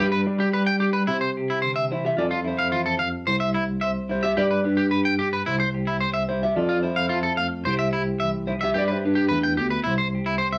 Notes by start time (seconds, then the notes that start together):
0.00 G2 G3 D4 G4 B4
0.12 B4
0.26 G3 D4
0.40 G4
0.53 G4 B4
0.67 G5
0.80 D4 G4
0.93 B4
1.07 C3 E4 C5
1.21 C5
1.37 G4
1.50 E4
1.62 D3 C5
1.76 E5
1.90 E3 E4 C5
2.05 G4 E5
2.17 F2 F3 F4 A4 D5
2.31 F4
2.44 E4 C5
2.59 F5
2.72 E3 F4
2.86 A4
2.99 F5, muted clean electric guitar stroke
3.27 C2 C3 C5
3.40 E5
3.54 E4, muted clean electric guitar stroke
3.81 C5 E5
4.09 G3 E4 C5
4.23 G4 E5
4.36 G2 G3 G4 B4 D5
4.51 B4
4.64 D4 G4 B4
4.77 G4
4.91 G4 B4
5.05 G5
5.19 D4 G4
5.33 B4
5.46 C2 C3 E4 C5
5.60 C5
5.74 G4
5.87 E4
6.00 C5
6.14 E5
6.29 G3 E4 C5
6.43 G4 E5
6.56 F2 F3 F4 A4 D5
6.69 F4
6.83 E4 C5
6.96 F5
7.09 F4 A4
7.23 A4
7.37 A3 F5
7.65 C2 C3 G3 E4 G4 C5
7.79 E5
7.93 E4 G4
8.20 E3 E5
8.47 F3 E4 C5
8.61 G4 E5
8.74 G2 G3 G4 D5
8.78 D4 G4 B4
8.88 E4 B4 C5
9.05 D4 G4 B4
9.15 G4
9.29 E2 A3 B4
9.43 G5
9.57 D2 B3 G4
9.70 B4
9.84 C2 C3 E4 C5
9.98 C5
10.15 G4
10.26 E4
10.38 C5
10.42 C5
10.53 E5